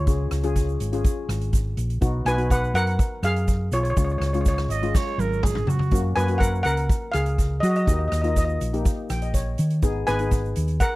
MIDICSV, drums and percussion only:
0, 0, Header, 1, 2, 480
1, 0, Start_track
1, 0, Tempo, 487805
1, 73, Time_signature, 4, 2, 24, 8
1, 10782, End_track
2, 0, Start_track
2, 0, Title_t, "Drums"
2, 67, Note_on_c, 9, 42, 68
2, 69, Note_on_c, 9, 36, 105
2, 78, Note_on_c, 9, 82, 84
2, 165, Note_off_c, 9, 42, 0
2, 167, Note_off_c, 9, 36, 0
2, 177, Note_off_c, 9, 82, 0
2, 306, Note_on_c, 9, 37, 83
2, 306, Note_on_c, 9, 42, 82
2, 312, Note_on_c, 9, 82, 59
2, 404, Note_off_c, 9, 37, 0
2, 404, Note_off_c, 9, 42, 0
2, 410, Note_off_c, 9, 82, 0
2, 427, Note_on_c, 9, 42, 63
2, 525, Note_off_c, 9, 42, 0
2, 549, Note_on_c, 9, 36, 86
2, 550, Note_on_c, 9, 42, 66
2, 553, Note_on_c, 9, 82, 82
2, 647, Note_off_c, 9, 36, 0
2, 648, Note_off_c, 9, 42, 0
2, 652, Note_off_c, 9, 82, 0
2, 677, Note_on_c, 9, 82, 26
2, 775, Note_off_c, 9, 82, 0
2, 789, Note_on_c, 9, 42, 86
2, 799, Note_on_c, 9, 82, 68
2, 887, Note_off_c, 9, 42, 0
2, 898, Note_off_c, 9, 82, 0
2, 913, Note_on_c, 9, 42, 63
2, 1011, Note_off_c, 9, 42, 0
2, 1027, Note_on_c, 9, 42, 62
2, 1029, Note_on_c, 9, 36, 110
2, 1044, Note_on_c, 9, 82, 89
2, 1125, Note_off_c, 9, 42, 0
2, 1127, Note_off_c, 9, 36, 0
2, 1142, Note_off_c, 9, 82, 0
2, 1273, Note_on_c, 9, 37, 82
2, 1273, Note_on_c, 9, 42, 77
2, 1282, Note_on_c, 9, 82, 63
2, 1371, Note_off_c, 9, 37, 0
2, 1371, Note_off_c, 9, 42, 0
2, 1380, Note_off_c, 9, 82, 0
2, 1391, Note_on_c, 9, 42, 63
2, 1489, Note_off_c, 9, 42, 0
2, 1503, Note_on_c, 9, 42, 63
2, 1506, Note_on_c, 9, 36, 92
2, 1520, Note_on_c, 9, 82, 84
2, 1602, Note_off_c, 9, 42, 0
2, 1605, Note_off_c, 9, 36, 0
2, 1618, Note_off_c, 9, 82, 0
2, 1744, Note_on_c, 9, 42, 81
2, 1756, Note_on_c, 9, 82, 69
2, 1842, Note_off_c, 9, 42, 0
2, 1854, Note_off_c, 9, 82, 0
2, 1869, Note_on_c, 9, 42, 58
2, 1967, Note_off_c, 9, 42, 0
2, 1985, Note_on_c, 9, 36, 110
2, 1986, Note_on_c, 9, 42, 60
2, 1990, Note_on_c, 9, 82, 84
2, 2084, Note_off_c, 9, 36, 0
2, 2084, Note_off_c, 9, 42, 0
2, 2088, Note_off_c, 9, 82, 0
2, 2223, Note_on_c, 9, 37, 77
2, 2223, Note_on_c, 9, 42, 75
2, 2237, Note_on_c, 9, 82, 65
2, 2321, Note_off_c, 9, 37, 0
2, 2321, Note_off_c, 9, 42, 0
2, 2336, Note_off_c, 9, 82, 0
2, 2343, Note_on_c, 9, 42, 57
2, 2441, Note_off_c, 9, 42, 0
2, 2464, Note_on_c, 9, 36, 92
2, 2468, Note_on_c, 9, 42, 63
2, 2472, Note_on_c, 9, 82, 96
2, 2562, Note_off_c, 9, 36, 0
2, 2566, Note_off_c, 9, 42, 0
2, 2571, Note_off_c, 9, 82, 0
2, 2598, Note_on_c, 9, 82, 29
2, 2696, Note_off_c, 9, 82, 0
2, 2703, Note_on_c, 9, 42, 83
2, 2717, Note_on_c, 9, 82, 67
2, 2802, Note_off_c, 9, 42, 0
2, 2815, Note_off_c, 9, 82, 0
2, 2823, Note_on_c, 9, 42, 60
2, 2921, Note_off_c, 9, 42, 0
2, 2943, Note_on_c, 9, 36, 110
2, 2944, Note_on_c, 9, 42, 64
2, 2954, Note_on_c, 9, 82, 86
2, 3042, Note_off_c, 9, 36, 0
2, 3042, Note_off_c, 9, 42, 0
2, 3052, Note_off_c, 9, 82, 0
2, 3181, Note_on_c, 9, 37, 85
2, 3181, Note_on_c, 9, 42, 83
2, 3183, Note_on_c, 9, 82, 67
2, 3280, Note_off_c, 9, 37, 0
2, 3280, Note_off_c, 9, 42, 0
2, 3282, Note_off_c, 9, 82, 0
2, 3309, Note_on_c, 9, 42, 60
2, 3407, Note_off_c, 9, 42, 0
2, 3421, Note_on_c, 9, 42, 66
2, 3423, Note_on_c, 9, 36, 89
2, 3425, Note_on_c, 9, 82, 92
2, 3520, Note_off_c, 9, 42, 0
2, 3522, Note_off_c, 9, 36, 0
2, 3524, Note_off_c, 9, 82, 0
2, 3661, Note_on_c, 9, 82, 67
2, 3664, Note_on_c, 9, 42, 90
2, 3759, Note_off_c, 9, 82, 0
2, 3762, Note_off_c, 9, 42, 0
2, 3786, Note_on_c, 9, 42, 64
2, 3884, Note_off_c, 9, 42, 0
2, 3905, Note_on_c, 9, 36, 106
2, 3906, Note_on_c, 9, 42, 67
2, 3908, Note_on_c, 9, 82, 91
2, 4003, Note_off_c, 9, 36, 0
2, 4004, Note_off_c, 9, 42, 0
2, 4007, Note_off_c, 9, 82, 0
2, 4029, Note_on_c, 9, 82, 26
2, 4127, Note_off_c, 9, 82, 0
2, 4149, Note_on_c, 9, 37, 77
2, 4149, Note_on_c, 9, 42, 80
2, 4247, Note_off_c, 9, 37, 0
2, 4247, Note_off_c, 9, 42, 0
2, 4269, Note_on_c, 9, 82, 26
2, 4270, Note_on_c, 9, 42, 60
2, 4367, Note_off_c, 9, 82, 0
2, 4368, Note_off_c, 9, 42, 0
2, 4385, Note_on_c, 9, 82, 102
2, 4387, Note_on_c, 9, 36, 93
2, 4389, Note_on_c, 9, 42, 73
2, 4483, Note_off_c, 9, 82, 0
2, 4485, Note_off_c, 9, 36, 0
2, 4488, Note_off_c, 9, 42, 0
2, 4509, Note_on_c, 9, 37, 85
2, 4512, Note_on_c, 9, 82, 28
2, 4607, Note_off_c, 9, 37, 0
2, 4611, Note_off_c, 9, 82, 0
2, 4626, Note_on_c, 9, 42, 91
2, 4633, Note_on_c, 9, 82, 74
2, 4724, Note_off_c, 9, 42, 0
2, 4731, Note_off_c, 9, 82, 0
2, 4751, Note_on_c, 9, 42, 61
2, 4849, Note_off_c, 9, 42, 0
2, 4868, Note_on_c, 9, 36, 113
2, 4869, Note_on_c, 9, 38, 62
2, 4872, Note_on_c, 9, 82, 102
2, 4966, Note_off_c, 9, 36, 0
2, 4968, Note_off_c, 9, 38, 0
2, 4970, Note_off_c, 9, 82, 0
2, 5107, Note_on_c, 9, 48, 71
2, 5117, Note_on_c, 9, 82, 69
2, 5205, Note_off_c, 9, 48, 0
2, 5216, Note_off_c, 9, 82, 0
2, 5246, Note_on_c, 9, 82, 30
2, 5344, Note_on_c, 9, 47, 88
2, 5345, Note_off_c, 9, 82, 0
2, 5346, Note_on_c, 9, 36, 87
2, 5371, Note_on_c, 9, 82, 98
2, 5442, Note_off_c, 9, 47, 0
2, 5444, Note_off_c, 9, 36, 0
2, 5463, Note_on_c, 9, 45, 82
2, 5469, Note_off_c, 9, 82, 0
2, 5486, Note_on_c, 9, 82, 28
2, 5561, Note_off_c, 9, 45, 0
2, 5579, Note_on_c, 9, 43, 89
2, 5584, Note_off_c, 9, 82, 0
2, 5606, Note_on_c, 9, 82, 74
2, 5677, Note_off_c, 9, 43, 0
2, 5698, Note_on_c, 9, 43, 83
2, 5704, Note_off_c, 9, 82, 0
2, 5730, Note_on_c, 9, 82, 28
2, 5796, Note_off_c, 9, 43, 0
2, 5817, Note_on_c, 9, 42, 61
2, 5823, Note_on_c, 9, 36, 100
2, 5829, Note_off_c, 9, 82, 0
2, 5855, Note_on_c, 9, 82, 94
2, 5916, Note_off_c, 9, 42, 0
2, 5921, Note_off_c, 9, 36, 0
2, 5954, Note_off_c, 9, 82, 0
2, 6058, Note_on_c, 9, 37, 77
2, 6058, Note_on_c, 9, 42, 69
2, 6087, Note_on_c, 9, 82, 67
2, 6156, Note_off_c, 9, 37, 0
2, 6156, Note_off_c, 9, 42, 0
2, 6181, Note_on_c, 9, 42, 58
2, 6186, Note_off_c, 9, 82, 0
2, 6280, Note_off_c, 9, 42, 0
2, 6298, Note_on_c, 9, 42, 64
2, 6304, Note_on_c, 9, 36, 96
2, 6326, Note_on_c, 9, 82, 102
2, 6396, Note_off_c, 9, 42, 0
2, 6402, Note_off_c, 9, 36, 0
2, 6424, Note_off_c, 9, 82, 0
2, 6447, Note_on_c, 9, 82, 31
2, 6537, Note_on_c, 9, 42, 83
2, 6546, Note_off_c, 9, 82, 0
2, 6562, Note_on_c, 9, 82, 81
2, 6635, Note_off_c, 9, 42, 0
2, 6661, Note_off_c, 9, 82, 0
2, 6663, Note_on_c, 9, 42, 60
2, 6761, Note_off_c, 9, 42, 0
2, 6783, Note_on_c, 9, 42, 60
2, 6784, Note_on_c, 9, 36, 114
2, 6801, Note_on_c, 9, 82, 100
2, 6881, Note_off_c, 9, 42, 0
2, 6883, Note_off_c, 9, 36, 0
2, 6899, Note_off_c, 9, 82, 0
2, 7021, Note_on_c, 9, 37, 86
2, 7021, Note_on_c, 9, 42, 77
2, 7036, Note_on_c, 9, 82, 73
2, 7119, Note_off_c, 9, 37, 0
2, 7119, Note_off_c, 9, 42, 0
2, 7134, Note_off_c, 9, 82, 0
2, 7143, Note_on_c, 9, 42, 62
2, 7242, Note_off_c, 9, 42, 0
2, 7266, Note_on_c, 9, 36, 82
2, 7267, Note_on_c, 9, 42, 60
2, 7277, Note_on_c, 9, 82, 92
2, 7364, Note_off_c, 9, 36, 0
2, 7365, Note_off_c, 9, 42, 0
2, 7375, Note_off_c, 9, 82, 0
2, 7508, Note_on_c, 9, 42, 88
2, 7515, Note_on_c, 9, 82, 75
2, 7606, Note_off_c, 9, 42, 0
2, 7614, Note_off_c, 9, 82, 0
2, 7632, Note_on_c, 9, 42, 62
2, 7730, Note_off_c, 9, 42, 0
2, 7748, Note_on_c, 9, 36, 106
2, 7748, Note_on_c, 9, 42, 60
2, 7756, Note_on_c, 9, 82, 90
2, 7846, Note_off_c, 9, 36, 0
2, 7847, Note_off_c, 9, 42, 0
2, 7854, Note_off_c, 9, 82, 0
2, 7989, Note_on_c, 9, 37, 84
2, 7989, Note_on_c, 9, 42, 81
2, 7999, Note_on_c, 9, 82, 64
2, 8087, Note_off_c, 9, 37, 0
2, 8087, Note_off_c, 9, 42, 0
2, 8098, Note_off_c, 9, 82, 0
2, 8108, Note_on_c, 9, 42, 59
2, 8206, Note_off_c, 9, 42, 0
2, 8230, Note_on_c, 9, 36, 93
2, 8230, Note_on_c, 9, 42, 63
2, 8232, Note_on_c, 9, 82, 95
2, 8328, Note_off_c, 9, 36, 0
2, 8328, Note_off_c, 9, 42, 0
2, 8330, Note_off_c, 9, 82, 0
2, 8357, Note_on_c, 9, 82, 26
2, 8456, Note_off_c, 9, 82, 0
2, 8473, Note_on_c, 9, 42, 90
2, 8474, Note_on_c, 9, 82, 73
2, 8571, Note_off_c, 9, 42, 0
2, 8573, Note_off_c, 9, 82, 0
2, 8597, Note_on_c, 9, 42, 64
2, 8696, Note_off_c, 9, 42, 0
2, 8713, Note_on_c, 9, 36, 110
2, 8715, Note_on_c, 9, 82, 90
2, 8717, Note_on_c, 9, 42, 64
2, 8811, Note_off_c, 9, 36, 0
2, 8813, Note_off_c, 9, 82, 0
2, 8815, Note_off_c, 9, 42, 0
2, 8951, Note_on_c, 9, 82, 72
2, 8954, Note_on_c, 9, 37, 80
2, 8954, Note_on_c, 9, 42, 88
2, 9049, Note_off_c, 9, 82, 0
2, 9053, Note_off_c, 9, 37, 0
2, 9053, Note_off_c, 9, 42, 0
2, 9071, Note_on_c, 9, 42, 67
2, 9169, Note_off_c, 9, 42, 0
2, 9188, Note_on_c, 9, 42, 68
2, 9190, Note_on_c, 9, 36, 88
2, 9195, Note_on_c, 9, 82, 92
2, 9287, Note_off_c, 9, 42, 0
2, 9288, Note_off_c, 9, 36, 0
2, 9294, Note_off_c, 9, 82, 0
2, 9426, Note_on_c, 9, 42, 87
2, 9439, Note_on_c, 9, 82, 71
2, 9524, Note_off_c, 9, 42, 0
2, 9537, Note_off_c, 9, 82, 0
2, 9548, Note_on_c, 9, 42, 61
2, 9646, Note_off_c, 9, 42, 0
2, 9665, Note_on_c, 9, 42, 62
2, 9669, Note_on_c, 9, 36, 104
2, 9672, Note_on_c, 9, 82, 91
2, 9763, Note_off_c, 9, 42, 0
2, 9767, Note_off_c, 9, 36, 0
2, 9770, Note_off_c, 9, 82, 0
2, 9909, Note_on_c, 9, 37, 80
2, 9909, Note_on_c, 9, 42, 77
2, 9912, Note_on_c, 9, 82, 65
2, 10007, Note_off_c, 9, 37, 0
2, 10007, Note_off_c, 9, 42, 0
2, 10011, Note_off_c, 9, 82, 0
2, 10026, Note_on_c, 9, 42, 59
2, 10124, Note_off_c, 9, 42, 0
2, 10145, Note_on_c, 9, 42, 61
2, 10149, Note_on_c, 9, 36, 94
2, 10155, Note_on_c, 9, 82, 95
2, 10244, Note_off_c, 9, 42, 0
2, 10248, Note_off_c, 9, 36, 0
2, 10253, Note_off_c, 9, 82, 0
2, 10284, Note_on_c, 9, 82, 28
2, 10382, Note_off_c, 9, 82, 0
2, 10388, Note_on_c, 9, 42, 88
2, 10399, Note_on_c, 9, 82, 76
2, 10486, Note_off_c, 9, 42, 0
2, 10498, Note_off_c, 9, 82, 0
2, 10506, Note_on_c, 9, 42, 60
2, 10605, Note_off_c, 9, 42, 0
2, 10626, Note_on_c, 9, 42, 60
2, 10630, Note_on_c, 9, 36, 109
2, 10633, Note_on_c, 9, 82, 90
2, 10725, Note_off_c, 9, 42, 0
2, 10728, Note_off_c, 9, 36, 0
2, 10731, Note_off_c, 9, 82, 0
2, 10782, End_track
0, 0, End_of_file